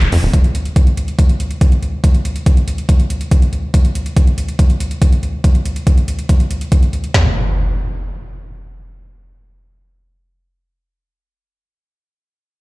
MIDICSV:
0, 0, Header, 1, 4, 480
1, 0, Start_track
1, 0, Tempo, 425532
1, 378, Time_signature, 4, 2, 24, 8
1, 14220, End_track
2, 0, Start_track
2, 0, Title_t, "Analog synth bass"
2, 0, Program_c, 0, 38
2, 18, Note_on_c, 0, 27, 84
2, 86, Note_off_c, 0, 27, 0
2, 138, Note_on_c, 0, 41, 97
2, 206, Note_off_c, 0, 41, 0
2, 258, Note_on_c, 0, 27, 92
2, 326, Note_off_c, 0, 27, 0
2, 14220, End_track
3, 0, Start_track
3, 0, Title_t, "Impact"
3, 0, Program_c, 1, 103
3, 8059, Note_on_c, 1, 60, 64
3, 11744, Note_off_c, 1, 60, 0
3, 14220, End_track
4, 0, Start_track
4, 0, Title_t, "Drums"
4, 18, Note_on_c, 9, 42, 37
4, 131, Note_off_c, 9, 42, 0
4, 138, Note_on_c, 9, 46, 106
4, 251, Note_off_c, 9, 46, 0
4, 378, Note_on_c, 9, 36, 118
4, 378, Note_on_c, 9, 42, 87
4, 491, Note_off_c, 9, 36, 0
4, 491, Note_off_c, 9, 42, 0
4, 498, Note_on_c, 9, 42, 37
4, 611, Note_off_c, 9, 42, 0
4, 619, Note_on_c, 9, 42, 62
4, 731, Note_off_c, 9, 42, 0
4, 738, Note_on_c, 9, 42, 38
4, 851, Note_off_c, 9, 42, 0
4, 858, Note_on_c, 9, 36, 121
4, 858, Note_on_c, 9, 42, 86
4, 971, Note_off_c, 9, 36, 0
4, 971, Note_off_c, 9, 42, 0
4, 978, Note_on_c, 9, 42, 38
4, 1091, Note_off_c, 9, 42, 0
4, 1098, Note_on_c, 9, 42, 63
4, 1211, Note_off_c, 9, 42, 0
4, 1218, Note_on_c, 9, 42, 37
4, 1331, Note_off_c, 9, 42, 0
4, 1338, Note_on_c, 9, 36, 117
4, 1338, Note_on_c, 9, 42, 88
4, 1451, Note_off_c, 9, 36, 0
4, 1451, Note_off_c, 9, 42, 0
4, 1459, Note_on_c, 9, 42, 38
4, 1571, Note_off_c, 9, 42, 0
4, 1579, Note_on_c, 9, 42, 60
4, 1691, Note_off_c, 9, 42, 0
4, 1699, Note_on_c, 9, 42, 37
4, 1811, Note_off_c, 9, 42, 0
4, 1818, Note_on_c, 9, 36, 118
4, 1818, Note_on_c, 9, 42, 90
4, 1931, Note_off_c, 9, 36, 0
4, 1931, Note_off_c, 9, 42, 0
4, 1938, Note_on_c, 9, 42, 38
4, 2051, Note_off_c, 9, 42, 0
4, 2059, Note_on_c, 9, 42, 37
4, 2171, Note_off_c, 9, 42, 0
4, 2298, Note_on_c, 9, 36, 114
4, 2299, Note_on_c, 9, 42, 89
4, 2411, Note_off_c, 9, 36, 0
4, 2411, Note_off_c, 9, 42, 0
4, 2419, Note_on_c, 9, 42, 40
4, 2531, Note_off_c, 9, 42, 0
4, 2539, Note_on_c, 9, 42, 63
4, 2651, Note_off_c, 9, 42, 0
4, 2658, Note_on_c, 9, 42, 39
4, 2771, Note_off_c, 9, 42, 0
4, 2778, Note_on_c, 9, 36, 114
4, 2779, Note_on_c, 9, 42, 87
4, 2891, Note_off_c, 9, 36, 0
4, 2891, Note_off_c, 9, 42, 0
4, 2899, Note_on_c, 9, 42, 38
4, 3011, Note_off_c, 9, 42, 0
4, 3019, Note_on_c, 9, 42, 61
4, 3132, Note_off_c, 9, 42, 0
4, 3139, Note_on_c, 9, 42, 39
4, 3251, Note_off_c, 9, 42, 0
4, 3258, Note_on_c, 9, 36, 111
4, 3259, Note_on_c, 9, 42, 89
4, 3371, Note_off_c, 9, 36, 0
4, 3372, Note_off_c, 9, 42, 0
4, 3379, Note_on_c, 9, 42, 39
4, 3491, Note_off_c, 9, 42, 0
4, 3499, Note_on_c, 9, 42, 65
4, 3611, Note_off_c, 9, 42, 0
4, 3619, Note_on_c, 9, 42, 40
4, 3731, Note_off_c, 9, 42, 0
4, 3738, Note_on_c, 9, 36, 115
4, 3739, Note_on_c, 9, 42, 90
4, 3851, Note_off_c, 9, 36, 0
4, 3851, Note_off_c, 9, 42, 0
4, 3859, Note_on_c, 9, 42, 39
4, 3971, Note_off_c, 9, 42, 0
4, 3979, Note_on_c, 9, 42, 38
4, 4091, Note_off_c, 9, 42, 0
4, 4218, Note_on_c, 9, 36, 109
4, 4219, Note_on_c, 9, 42, 95
4, 4331, Note_off_c, 9, 36, 0
4, 4331, Note_off_c, 9, 42, 0
4, 4339, Note_on_c, 9, 42, 40
4, 4451, Note_off_c, 9, 42, 0
4, 4459, Note_on_c, 9, 42, 64
4, 4572, Note_off_c, 9, 42, 0
4, 4579, Note_on_c, 9, 42, 40
4, 4692, Note_off_c, 9, 42, 0
4, 4698, Note_on_c, 9, 36, 111
4, 4699, Note_on_c, 9, 42, 92
4, 4811, Note_off_c, 9, 36, 0
4, 4811, Note_off_c, 9, 42, 0
4, 4819, Note_on_c, 9, 42, 39
4, 4932, Note_off_c, 9, 42, 0
4, 4938, Note_on_c, 9, 42, 67
4, 5051, Note_off_c, 9, 42, 0
4, 5059, Note_on_c, 9, 42, 40
4, 5172, Note_off_c, 9, 42, 0
4, 5178, Note_on_c, 9, 36, 115
4, 5179, Note_on_c, 9, 42, 94
4, 5291, Note_off_c, 9, 36, 0
4, 5291, Note_off_c, 9, 42, 0
4, 5299, Note_on_c, 9, 42, 40
4, 5411, Note_off_c, 9, 42, 0
4, 5419, Note_on_c, 9, 42, 66
4, 5531, Note_off_c, 9, 42, 0
4, 5539, Note_on_c, 9, 42, 40
4, 5652, Note_off_c, 9, 42, 0
4, 5658, Note_on_c, 9, 36, 111
4, 5659, Note_on_c, 9, 42, 98
4, 5771, Note_off_c, 9, 36, 0
4, 5772, Note_off_c, 9, 42, 0
4, 5779, Note_on_c, 9, 42, 40
4, 5892, Note_off_c, 9, 42, 0
4, 5899, Note_on_c, 9, 42, 39
4, 6012, Note_off_c, 9, 42, 0
4, 6138, Note_on_c, 9, 36, 113
4, 6138, Note_on_c, 9, 42, 94
4, 6251, Note_off_c, 9, 36, 0
4, 6251, Note_off_c, 9, 42, 0
4, 6259, Note_on_c, 9, 42, 41
4, 6371, Note_off_c, 9, 42, 0
4, 6379, Note_on_c, 9, 42, 67
4, 6491, Note_off_c, 9, 42, 0
4, 6498, Note_on_c, 9, 42, 41
4, 6611, Note_off_c, 9, 42, 0
4, 6618, Note_on_c, 9, 36, 114
4, 6618, Note_on_c, 9, 42, 94
4, 6731, Note_off_c, 9, 36, 0
4, 6731, Note_off_c, 9, 42, 0
4, 6738, Note_on_c, 9, 42, 40
4, 6851, Note_off_c, 9, 42, 0
4, 6858, Note_on_c, 9, 42, 67
4, 6971, Note_off_c, 9, 42, 0
4, 6978, Note_on_c, 9, 42, 40
4, 7091, Note_off_c, 9, 42, 0
4, 7098, Note_on_c, 9, 36, 109
4, 7098, Note_on_c, 9, 42, 96
4, 7211, Note_off_c, 9, 36, 0
4, 7211, Note_off_c, 9, 42, 0
4, 7218, Note_on_c, 9, 42, 40
4, 7331, Note_off_c, 9, 42, 0
4, 7338, Note_on_c, 9, 42, 67
4, 7451, Note_off_c, 9, 42, 0
4, 7458, Note_on_c, 9, 42, 42
4, 7571, Note_off_c, 9, 42, 0
4, 7578, Note_on_c, 9, 36, 113
4, 7578, Note_on_c, 9, 42, 98
4, 7691, Note_off_c, 9, 36, 0
4, 7691, Note_off_c, 9, 42, 0
4, 7698, Note_on_c, 9, 42, 40
4, 7811, Note_off_c, 9, 42, 0
4, 7818, Note_on_c, 9, 42, 40
4, 7931, Note_off_c, 9, 42, 0
4, 7938, Note_on_c, 9, 42, 38
4, 8051, Note_off_c, 9, 42, 0
4, 8058, Note_on_c, 9, 38, 101
4, 8058, Note_on_c, 9, 43, 98
4, 8171, Note_off_c, 9, 38, 0
4, 8171, Note_off_c, 9, 43, 0
4, 14220, End_track
0, 0, End_of_file